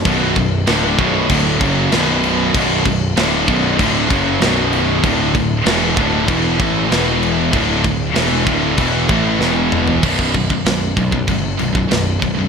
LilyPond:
<<
  \new Staff \with { instrumentName = "Overdriven electric guitar" } { \clef bass \time 4/4 \key b \minor \tempo 4 = 96 <b,, fis, b,>8 <b,, fis,>8 <d, a, d>8 <b,, fis, b,>8 <d, a, d>8 <fis, cis fis>8 <b,, fis, b,>4 | <b,, fis, b,>8 <b,, fis,>8 <d, a, d>8 <b,, fis, b,>8 <d, a, d>8 <fis, cis fis>8 <b,, fis, b,>4 | <d, a, d>8 <d, a,>8 <e, b, e>8 <d, a, d>8 <e, b, e>8 <a, e a>8 <e, b, e>4 | <d, a, d>8 <d, a,>8 <e, b, e>8 <d, a, d>8 <e, b, e>8 <a, e a>8 <e, b, e>4 |
r1 | }
  \new Staff \with { instrumentName = "Distorted electric guitar" } { \clef bass \time 4/4 \key b \minor <b,, fis, b,>8 <b,, fis,>8 <d, a, d>8 <b,, fis, b,>8 <d, a, d>8 <fis, cis fis>8 <b,, fis, b,>4 | <b,, fis, b,>8 <b,, fis,>8 <d, a, d>8 <b,, fis, b,>8 <d, a, d>8 <fis, cis fis>8 <b,, fis, b,>4 | <d, a, d>8 <d, a,>8 <e, b, e>8 <d, a, d>8 <e, b, e>8 <a, e a>8 <e, b, e>4 | <d, a, d>8 <d, a,>8 <e, b, e>8 <d, a, d>8 <e, b, e>8 <a, e a>8 <e, b, e>4 |
<b,, fis, b,>8 <b,, fis,>16 <b,, fis,>16 <b,, fis,>8 <b,, fis,>16 <b,, fis,>16 <b,, fis,>8 <b,, fis,>16 <b,, fis,>16 <b,, fis,>8 <b,, fis,>16 <b,, fis,>16 | }
  \new Staff \with { instrumentName = "Distorted electric guitar" } { \clef bass \time 4/4 \key b \minor <b,, fis, b,>8 <b,, fis,>8 <d, a, d>8 <b,, fis, b,>8 <d, a, d>8 <fis, cis fis>8 <b,, fis, b,>4 | <b,, fis, b,>8 <b,, fis,>8 <d, a, d>8 <b,, fis, b,>8 <d, a, d>8 <fis, cis fis>8 <b,, fis, b,>4 | <d, a, d>8 <d, a,>8 <e, b, e>8 <d, a, d>8 <e, b, e>8 <a, e a>8 <e, b, e>4 | <d, a, d>8 <d, a,>8 <e, b, e>8 <d, a, d>8 <e, b, e>8 <a, e a>8 <e, b, e>4 |
<b,, fis, b,>8 <b,, fis,>16 <b,, fis,>16 <b,, fis,>8 <b,, fis,>16 <b,, fis,>16 <b,, fis,>8 <b,, fis,>16 <b,, fis,>16 <b,, fis,>8 <b,, fis,>16 <b,, fis,>16 | }
  \new Staff \with { instrumentName = "Picked electric bass" } { \clef bass \time 4/4 \key b \minor b,,,8 b,,,8 d,,8 b,,,8 d,,8 fis,,8 b,,,4 | b,,,8 b,,,8 d,,8 b,,,8 d,,8 fis,,8 b,,,4 | d,,8 d,,8 e,,8 d,,8 e,,8 a,,8 e,,4 | d,,8 d,,8 e,,8 d,,8 e,,8 a,,8 e,,4 |
b,,,4 b,,,8 b,,8 fis,,8 b,,,8 b,,,8 b,,,8 | }
  \new DrumStaff \with { instrumentName = "Drums" } \drummode { \time 4/4 <cymc bd>8 <cymc bd>8 <cymc sn>8 <cymc bd>8 <cymc bd>8 <cymc bd>8 <cymc sn>8 cymc8 | <cymc bd>8 <cymc bd>8 <cymc sn>8 <cymc bd>8 <cymc bd>8 <cymc bd>8 <cymc sn>8 cymc8 | <cymc bd>8 <cymc bd>8 <cymc sn>8 <cymc bd>8 <cymc bd>8 <cymc bd>8 <cymc sn>8 cymc8 | <cymc bd>8 <cymc bd>8 <cymc sn>8 <cymc bd>8 <cymc bd>8 <cymc bd>8 sn8 toml16 tomfh16 |
<cymc bd>16 bd16 <cymc bd>16 bd16 <cymc sn>8 <cymc bd>16 bd16 <cymc bd>8 cymc16 bd16 <cymc sn>8 <cymc bd>8 | }
>>